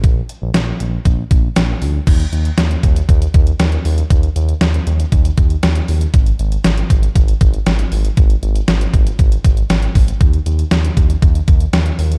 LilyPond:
<<
  \new Staff \with { instrumentName = "Analog synth bass" } { \clef bass \time 4/4 \key aes \lydian \tempo 4 = 118 bes,,8 r16 bes,,16 bes,,8 bes,,8 bes,,8 bes,,8 bes,,8 d,8 | ees,8 ees,8 ees,8 ees,8 ees,8 ees,8 ees,8 ees,8 | ees,8 ees,8 ees,8 ees,8 ees,8 ees,8 ees,8 ees,8 | aes,,8 aes,,8 aes,,8 aes,,8 aes,,8 aes,,8 aes,,8 aes,,8 |
aes,,8 aes,,8 aes,,8 aes,,8 aes,,8 aes,,8 aes,,8 aes,,8 | ees,8 ees,8 ees,8 ees,8 ees,8 ees,8 ees,8 ees,8 | }
  \new DrumStaff \with { instrumentName = "Drums" } \drummode { \time 4/4 <hh bd>8 hh8 <hh sn>8 hh8 <hh bd>8 <hh bd>8 <hh sn>8 hho8 | <cymc hh bd>16 hh16 hh16 hh16 <hh sn>16 hh16 <hh bd>16 hh16 <hh bd>16 hh16 <hh bd>16 hh16 <hh sn>16 hh16 hho16 hh16 | <hh bd>16 hh16 hh16 hh16 <hh sn>16 hh16 hh16 hh16 <hh bd>16 hh16 <hh bd>16 hh16 <hh sn>16 hh16 hho16 hh16 | <hh bd>16 hh16 hh16 hh16 <hh sn>16 hh16 <hh bd>16 hh16 <hh bd>16 hh16 <hh bd>16 hh16 <hh sn>16 hh16 hho16 hh16 |
<hh bd>16 hh16 hh16 hh16 <hh sn>16 hh16 <hh bd>16 hh16 <hh bd>16 hh16 <hh bd>16 hh16 <hh sn>16 hh16 <hho bd>16 hh16 | <hh bd>16 hh16 hh16 hh16 <hh sn>16 hh16 <hh bd>16 hh16 <hh bd>16 hh16 <hh bd>16 hh16 <hh sn>16 hh16 hho16 hh16 | }
>>